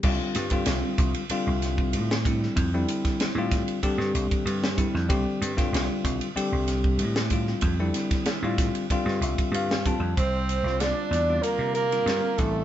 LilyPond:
<<
  \new Staff \with { instrumentName = "Soprano saxophone" } { \time 4/4 \key c \mixolydian \tempo 4 = 95 r1 | r1 | r1 | r1 |
c''4 d''4 bes'8 bes'4 a'8 | }
  \new Staff \with { instrumentName = "Tine electric piano" } { \time 4/4 \key c \mixolydian r1 | r1 | r1 | r2 r8 e''8 f''8 a''8 |
r1 | }
  \new Staff \with { instrumentName = "Tine electric piano" } { \time 4/4 \key c \mixolydian <d g c' f'>8. <d g c' f'>4 r16 <d g c' f'>4~ <d g c' f'>16 r16 <d g c' e'>8~ | <d g c' e'>16 <d g c' e'>4 <d g c' f'>8. <d g c' g'>4~ <d g c' g'>16 r16 <d g c' e'>8 | <d g c' g'>8. <d g c' f'>4 r16 <d g c' g'>4~ <d g c' g'>16 r16 <d g c' f'>8~ | <d g c' f'>16 <d g c' e'>4 <d g c' f'>8. <d g c' f'>4~ <d g c' f'>16 r16 <d g c' f'>8 |
r8. <d g c' f'>4 <d g c' f'>4 <d g c' f'>8. <d g c' e'>8 | }
  \new Staff \with { instrumentName = "Tenor saxophone" } { \time 4/4 \key c \mixolydian r1 | r1 | r1 | r1 |
c'4 d'4 bes8 bes4 a8 | }
  \new Staff \with { instrumentName = "Slap bass" } { \clef bass \time 4/4 \key c \mixolydian c,16 r16 g,8 c,16 r16 c,16 r8 c,8. a,4 | f,8 r8. a,8 r8 g,16 c,16 r16 g,8. f,16 | c,16 r16 g,8 c,16 r16 c,16 r8 c,8. a,4 | f,8 r8. a,8 r8 g,16 c,16 r16 g,8. f,16 |
c,8. c,8 r16 e,8 r16 c8. g,16 r16 a,,8 | }
  \new DrumStaff \with { instrumentName = "Drums" } \drummode { \time 4/4 <cymc bd>8 <hhp cymr sn>16 <bd cymr>16 <cymr sn>8 <hhp bd cymr>16 cymr16 cymr8 <hhp cymr sn>16 bd16 cymr16 sn16 <hhp bd cymr>16 sn16 | <bd cymr>8 <hhp cymr>16 <bd cymr sn>16 <cymr sn>8 <hhp bd cymr sn>16 cymr16 <bd cymr>16 sn16 <hhp cymr>16 <bd cymr>16 cymr16 sn16 <hhp bd cymr>16 sn16 | <bd cymr>8 <hhp cymr>16 <bd cymr sn>16 <cymr sn>8 <hhp bd cymr>16 cymr16 cymr8 <hhp cymr sn>16 bd16 cymr16 sn16 <hhp bd cymr>16 sn16 | <bd cymr>8 <hhp cymr sn>16 <bd cymr sn>16 <cymr sn>8 <hhp bd cymr sn>16 cymr16 <bd cymr>16 sn16 <hhp cymr sn>16 <bd cymr>16 cymr16 sn16 <hhp bd cymr>8 |
<hhp bd cymr>8 <hhp cymr>16 sn16 <hhp cymr sn>8 <hhp cymr sn>8 <hhp cymr>8 <hhp cymr>16 <cymr sn>16 <hhp cymr sn>8 <hhp bd cymr>8 | }
>>